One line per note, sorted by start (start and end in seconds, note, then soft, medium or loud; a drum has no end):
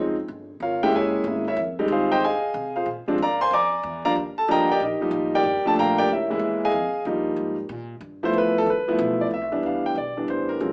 0.00 0.27 F#1 medium
0.00 0.14 F3 medium
0.00 0.15 G#3 medium
0.00 0.15 C4 medium
0.00 0.15 D#4 medium
0.28 0.60 G1 medium
0.60 0.92 G#1 medium
0.60 0.82 F4 medium
0.60 0.82 A#4 medium
0.60 0.81 C#5 medium
0.60 0.81 F5 medium
0.83 1.24 G#3 medium
0.83 1.24 A#3 medium
0.83 1.24 C#4 medium
0.83 1.24 E4 medium
0.83 0.94 G4 medium
0.83 0.94 A#4 medium
0.83 0.94 C#5 medium
0.83 0.93 G5 medium
0.92 1.23 F#1 medium
0.92 1.43 G#4 medium
0.92 1.44 C#5 medium
0.92 1.44 E5 medium
0.92 1.43 G#5 medium
1.24 1.56 G#1 loud
1.24 1.44 G#3 medium
1.24 1.44 A#3 medium
1.24 1.44 C#4 medium
1.24 1.45 E4 medium
1.48 1.58 E4 medium
1.48 1.58 A#4 medium
1.48 1.58 C#5 medium
1.48 1.58 E5 medium
1.56 1.87 F2 loud
1.79 2.20 G3 medium
1.79 2.20 G#3 medium
1.79 2.20 C4 medium
1.79 2.20 D#4 medium
1.88 2.20 D#2 medium
1.88 2.11 F4 medium
1.92 2.11 G#4 medium
1.92 2.11 C5 medium
1.92 2.11 F5 medium
2.12 2.22 G4 medium
2.12 2.23 C5 medium
2.12 2.22 D#5 medium
2.12 2.22 G5 loud
2.20 2.40 G2 medium
2.24 2.72 G#4 medium
2.24 2.72 D#5 medium
2.24 2.73 F5 medium
2.24 2.72 G#5 loud
2.42 muted upright bass stroke soft
2.54 2.85 C3 medium
2.76 2.87 F4 medium
2.76 2.87 G#4 medium
2.76 2.87 C5 medium
2.76 2.87 F5 medium
2.86 3.05 A#2 medium
3.06 3.18 F3 medium
3.06 3.18 G#3 medium
3.06 3.18 C4 medium
3.06 3.18 D4 medium
3.06 muted upright bass stroke soft
3.18 3.50 G#2 medium
3.22 3.41 A#4 medium
3.22 3.41 D5 medium
3.22 3.40 F5 medium
3.22 3.41 A#5 loud
3.41 3.52 C5 medium
3.41 3.52 F5 medium
3.41 3.52 G#5 medium
3.41 3.52 C6 loud
3.51 3.82 F2 medium
3.51 4.02 D5 medium
3.51 4.02 G#5 medium
3.51 4.01 A#5 medium
3.51 4.01 D6 loud
3.83 4.15 E2 loud
4.05 4.15 F3 medium
4.05 4.15 G3 medium
4.05 4.15 A#3 medium
4.05 4.15 D4 medium
4.05 4.12 A#4 medium
4.05 4.12 D5 medium
4.05 4.12 F5 medium
4.05 4.12 A#5 loud
4.15 4.35 D#2 medium
4.37 4.49 A4 medium
4.37 4.48 A5 medium
4.37 muted upright bass stroke soft
4.48 4.79 D2 medium
4.48 4.67 F3 medium
4.48 4.66 G3 medium
4.48 4.67 A#3 medium
4.48 4.67 D4 medium
4.48 4.70 A#4 medium
4.48 4.70 D#5 medium
4.48 4.70 G5 medium
4.48 4.69 A#5 loud
4.71 4.81 G4 medium
4.71 4.81 D5 medium
4.71 4.81 D#5 medium
4.71 4.81 G5 loud
4.80 4.99 A#1 medium
4.80 5.00 D#4 medium
4.80 5.31 G4 medium
4.80 5.31 A#4 medium
4.80 5.31 D#5 medium
5.01 5.42 F3 medium
5.01 5.43 G3 medium
5.01 5.43 A#3 medium
5.01 5.43 D#4 medium
5.01 muted upright bass stroke soft
5.11 5.43 A1 loud
5.35 5.75 G4 medium
5.35 5.75 A#4 medium
5.35 5.75 D5 medium
5.35 5.75 G5 loud
5.43 5.63 G1 medium
5.64 6.07 F3 medium
5.64 6.07 A3 medium
5.64 6.07 A#3 medium
5.64 6.07 D4 medium
5.64 5.78 A4 medium
5.64 5.73 A5 loud
5.64 muted upright bass stroke soft
5.75 6.07 A#1 medium
5.75 5.77 A5 medium
5.79 5.98 A#4 medium
5.79 5.98 F5 medium
5.79 5.97 G5 medium
5.79 5.98 A#5 loud
5.98 6.10 G4 medium
5.98 6.10 A#4 medium
5.98 6.09 D5 medium
5.98 6.09 G5 loud
6.08 6.39 C#2 medium
6.12 6.29 E4 medium
6.12 6.60 A#4 medium
6.12 6.60 C#5 soft
6.12 6.60 E5 medium
6.30 6.72 E3 medium
6.30 6.72 G#3 medium
6.30 6.72 A#3 medium
6.30 6.72 E4 medium
6.39 6.71 E2 medium
6.65 7.04 G#4 medium
6.65 7.04 D#5 medium
6.65 7.04 F5 medium
6.65 7.04 G#5 loud
6.72 6.92 F2 medium
6.93 muted upright bass stroke soft
7.05 7.36 G2 medium
7.05 7.54 F3 medium
7.05 7.55 G3 medium
7.05 7.55 A#3 medium
7.05 7.55 D#4 medium
7.36 7.68 G#2 medium
7.69 8.00 A#2 loud
8.01 8.33 G2 medium
8.23 8.65 F3 medium
8.23 8.65 A3 medium
8.23 8.65 B3 medium
8.23 8.65 E4 medium
8.23 8.35 C5 medium
8.33 8.65 E2 medium
8.38 8.56 B4 medium
8.58 8.68 A4 loud
8.66 8.86 D2 medium
8.66 8.99 B4 medium
8.87 9.29 F3 medium
8.87 9.30 A3 medium
8.87 9.30 B3 medium
8.87 9.30 E4 medium
8.87 muted upright bass stroke soft
8.99 9.30 B1 loud
9.21 9.26 D5 medium
9.31 9.41 C2 medium
9.31 9.66 E5 medium
9.41 9.51 B1 medium
9.52 9.62 G1 medium
9.52 9.94 E3 medium
9.52 9.94 G3 medium
9.52 9.94 B3 medium
9.52 9.94 D4 medium
9.63 9.95 D2 medium
9.63 9.84 F5 medium
9.86 9.96 G5 medium
9.95 10.27 B1 medium
9.95 10.27 D5 medium
10.17 10.58 E3 medium
10.17 10.59 G3 medium
10.17 10.59 B3 medium
10.17 10.59 D4 medium
10.28 10.59 A1 medium
10.28 10.50 C5 medium
10.49 10.73 A#4 medium
10.60 10.73 A#1 medium
10.60 10.73 F3 medium
10.60 10.73 G#3 medium
10.60 10.73 C4 medium
10.60 10.73 C#4 medium